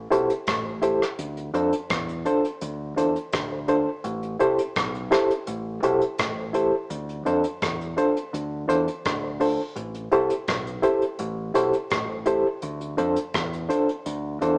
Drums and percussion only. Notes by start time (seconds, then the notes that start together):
0.12 closed hi-hat
0.30 closed hi-hat
0.47 kick, cross-stick, closed hi-hat
0.82 closed hi-hat
1.02 cross-stick
1.19 closed hi-hat
1.37 closed hi-hat
1.54 closed hi-hat
1.73 closed hi-hat
1.90 kick, cross-stick, closed hi-hat
2.09 closed hi-hat
2.25 closed hi-hat
2.45 closed hi-hat
2.61 closed hi-hat
2.98 closed hi-hat
3.16 closed hi-hat
3.32 kick, cross-stick, closed hi-hat
3.68 closed hi-hat
4.04 closed hi-hat
4.23 closed hi-hat
4.40 closed hi-hat
4.58 closed hi-hat
4.76 kick, cross-stick, closed hi-hat
4.95 closed hi-hat
5.12 cross-stick, closed hi-hat
5.30 closed hi-hat
5.47 closed hi-hat
5.83 closed hi-hat
6.01 closed hi-hat
6.18 kick, cross-stick, closed hi-hat
6.54 closed hi-hat
6.90 closed hi-hat
7.09 closed hi-hat
7.26 closed hi-hat
7.44 closed hi-hat
7.62 kick, cross-stick, closed hi-hat
7.81 closed hi-hat
7.98 closed hi-hat
8.17 closed hi-hat
8.34 closed hi-hat
8.69 closed hi-hat
8.88 closed hi-hat
9.05 kick, cross-stick, closed hi-hat
9.40 open hi-hat
9.76 closed hi-hat
9.95 closed hi-hat
10.12 closed hi-hat
10.30 closed hi-hat
10.47 kick, cross-stick, closed hi-hat
10.67 closed hi-hat
10.83 closed hi-hat
11.02 closed hi-hat
11.19 closed hi-hat
11.55 closed hi-hat
11.73 closed hi-hat
11.90 kick, cross-stick, closed hi-hat
12.26 closed hi-hat
12.62 closed hi-hat
12.81 closed hi-hat
12.98 closed hi-hat
13.16 closed hi-hat
13.34 kick, cross-stick, closed hi-hat
13.53 closed hi-hat
13.70 closed hi-hat
13.89 closed hi-hat
14.06 closed hi-hat
14.42 closed hi-hat